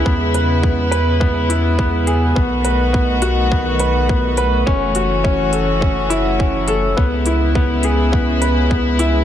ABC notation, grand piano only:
X:1
M:4/4
L:1/8
Q:1/4=104
K:C#m
V:1 name="Grand piano"
B, B B, B B, E B, G | B, B B, F B, B B, B | C F C A C E C A | B, E B, G B, B B, E |]